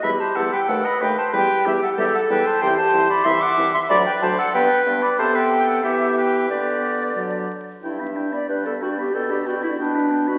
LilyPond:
<<
  \new Staff \with { instrumentName = "Flute" } { \time 2/4 \key e \minor \tempo 4 = 92 b''16 a''16 fis''16 g''16 fis''16 b''16 g''16 a''16 | g''8 e''16 fis''16 e''16 fis''16 g''16 a''16 | \key g \major g''16 a''8 b''16 c'''16 d'''8 c'''16 | b''16 g''16 a''16 fis''16 g''8. b''16 |
a''16 g''8 fis''16 e''8 g''8 | d''4. r8 | e''4 d''4~ | d''4 b'4 | }
  \new Staff \with { instrumentName = "Oboe" } { \time 2/4 \key e \minor e''16 c''16 a'16 b'16 a'16 dis''16 b'16 c''16 | b'8 g'16 a'16 g'16 a'16 b'16 c''16 | \key g \major c''16 c''8 d''16 e''16 fis''8 e''16 | d''16 b'16 c''16 a'16 b'8. d''16 |
c''16 b'8 a'16 g'8 b'8 | g'4. r8 | g''16 b''16 g''16 b''16 g''16 b''16 g''16 b''16 | g''16 b''16 g''16 b''16 g''16 b''16 g''16 b''16 | }
  \new Staff \with { instrumentName = "Clarinet" } { \time 2/4 \key e \minor g'4 b'4 | g'4 a'4 | \key g \major g'4 e''4 | d''8 r8 b'4 |
a'4 g'4 | b'4. r8 | e'16 d'8 d''16 b'16 a'16 fis'16 g'16 | a'16 g'16 fis'16 e'16 d'8. fis'16 | }
  \new Staff \with { instrumentName = "French horn" } { \time 2/4 \key e \minor g8 g8 a8 a8 | g8 g8 g8 g8 | \key g \major e8 e8 e8 e8 | fis8 fis8 b8 b8 |
b4 b4 | b4 fis8 r8 | d'16 b16 d'16 b16 d'16 b16 d'16 b16 | b16 d'16 b16 d'16 b16 d'16 b16 d'16 | }
  \new Staff \with { instrumentName = "Bassoon" } { \clef bass \time 2/4 \key e \minor e,8 e,8 dis,8 dis,8 | e,8 e,8 e,8 e,8 | \key g \major c,8 c,8 c,8 c,8 | d,8 d,8 g,8 g,8 |
c4 e4 | d4 d8 r8 | g,4 g,4 | b,4 b,4 | }
>>